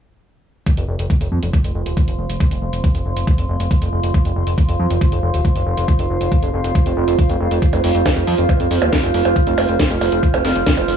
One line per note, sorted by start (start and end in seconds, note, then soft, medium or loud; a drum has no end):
0.67 10.97 F4 medium
0.67 kick loud
0.67 closed hi-hat medium
0.77 0.85 F1 medium
0.77 closed hi-hat medium
0.88 0.96 F1 medium
0.88 7.89 C6 medium
0.99 1.07 F1 medium
0.99 closed hi-hat medium
1.10 kick loud
1.10 closed hi-hat medium
1.21 1.28 F1 medium
1.21 closed hi-hat medium
1.28 1.39 F2 loud
1.28 10.97 C5 medium
1.42 1.50 F1 medium
1.42 10.97 F5 medium
1.42 closed hi-hat medium
1.53 kick loud
1.53 closed hi-hat medium
1.64 1.72 F1 medium
1.64 closed hi-hat medium
1.75 1.83 F1 loud
1.86 1.94 D#1 medium
1.86 closed hi-hat medium
1.97 kick loud
1.97 closed hi-hat medium
2.08 2.15 F1 medium
2.08 closed hi-hat medium
2.19 2.26 F1 medium
2.30 2.37 F1 medium
2.30 closed hi-hat medium
2.40 kick loud
2.40 closed hi-hat medium
2.51 2.59 F1 medium
2.51 closed hi-hat medium
2.62 2.70 F1 loud
2.73 2.80 F1 medium
2.73 closed hi-hat medium
2.84 kick loud
2.84 closed hi-hat medium
2.95 3.02 F1 medium
2.95 closed hi-hat medium
3.06 3.13 F1 loud
3.16 3.24 F1 medium
3.16 closed hi-hat medium
3.27 kick loud
3.27 closed hi-hat medium
3.38 3.46 F1 medium
3.38 closed hi-hat medium
3.49 3.57 F1 loud
3.60 3.67 F1 medium
3.60 closed hi-hat medium
3.71 kick loud
3.71 closed hi-hat medium
3.82 3.89 F1 medium
3.82 closed hi-hat medium
3.93 4.00 F1 loud
4.03 4.11 F1 medium
4.03 closed hi-hat medium
4.14 kick loud
4.14 closed hi-hat medium
4.25 4.33 F1 medium
4.25 closed hi-hat medium
4.36 4.44 F1 loud
4.47 4.54 F1 medium
4.47 closed hi-hat medium
4.58 kick loud
4.58 closed hi-hat medium
4.69 4.76 F1 medium
4.69 closed hi-hat medium
4.80 4.87 F2 loud
4.90 4.98 F1 medium
4.90 closed hi-hat medium
5.01 kick loud
5.01 closed hi-hat medium
5.12 5.20 F1 medium
5.12 closed hi-hat medium
5.23 5.30 F1 loud
5.34 5.41 D#1 medium
5.34 closed hi-hat medium
5.45 kick loud
5.45 closed hi-hat medium
5.56 5.63 F1 medium
5.56 closed hi-hat medium
5.66 5.74 F1 loud
5.77 5.85 F1 medium
5.77 closed hi-hat medium
5.88 kick loud
5.88 closed hi-hat medium
5.99 6.07 F1 medium
5.99 closed hi-hat medium
6.10 6.17 F1 loud
6.21 6.28 F1 loud
6.21 closed hi-hat medium
6.32 kick loud
6.32 closed hi-hat medium
6.43 6.50 F1 medium
6.43 closed hi-hat medium
6.53 6.61 F1 loud
6.64 6.72 F1 medium
6.64 closed hi-hat medium
6.75 kick loud
6.75 closed hi-hat medium
6.86 6.94 F1 medium
6.86 closed hi-hat medium
6.97 7.04 F1 loud
7.08 7.15 F1 medium
7.08 closed hi-hat medium
7.19 kick loud
7.19 closed hi-hat medium
7.30 7.37 F1 medium
7.30 closed hi-hat medium
7.40 7.48 F1 loud
7.51 7.59 F1 medium
7.51 closed hi-hat medium
7.62 kick loud
7.62 closed hi-hat medium
7.73 7.80 F1 medium
7.73 closed hi-hat medium
7.73 percussion blips soft
7.84 7.91 F1 loud
7.84 10.97 F6 medium
7.84 open hi-hat loud
7.95 8.02 F1 medium
7.95 closed hi-hat medium
8.06 kick loud
8.06 snare loud
8.06 closed hi-hat medium
8.06 percussion blips medium
8.17 8.24 F1 medium
8.17 closed hi-hat medium
8.27 8.35 F2 loud
8.27 open hi-hat medium
8.38 8.46 F1 medium
8.38 closed hi-hat medium
8.49 kick loud
8.49 closed hi-hat medium
8.49 percussion blips soft
8.60 8.67 F1 medium
8.60 closed hi-hat medium
8.71 8.78 F1 loud
8.71 open hi-hat loud
8.82 8.89 D#1 loud
8.82 closed hi-hat medium
8.82 percussion blips medium
8.93 kick loud
8.93 snare loud
8.93 closed hi-hat medium
9.03 9.11 F1 medium
9.03 closed hi-hat medium
9.14 9.22 F1 medium
9.14 open hi-hat medium
9.25 9.33 F1 medium
9.25 closed hi-hat medium
9.25 percussion blips soft
9.36 kick loud
9.36 closed hi-hat medium
9.47 9.54 F1 medium
9.47 closed hi-hat medium
9.58 9.65 F1 loud
9.58 open hi-hat loud
9.58 percussion blips medium
9.69 9.76 F1 medium
9.69 closed hi-hat medium
9.80 kick loud
9.80 snare loud
9.80 closed hi-hat medium
9.90 9.98 F1 medium
9.90 closed hi-hat medium
10.01 10.09 F1 loud
10.01 open hi-hat medium
10.01 percussion blips soft
10.12 10.20 F1 medium
10.12 closed hi-hat medium
10.23 kick loud
10.23 closed hi-hat medium
10.34 10.41 F1 medium
10.34 closed hi-hat medium
10.34 percussion blips medium
10.45 10.52 F1 loud
10.45 snare medium
10.45 open hi-hat loud
10.56 10.63 F1 medium
10.56 closed hi-hat medium
10.66 kick loud
10.66 snare loud
10.66 closed hi-hat medium
10.77 10.85 F1 medium
10.77 closed hi-hat medium
10.77 percussion blips soft
10.88 10.96 F1 loud
10.88 open hi-hat medium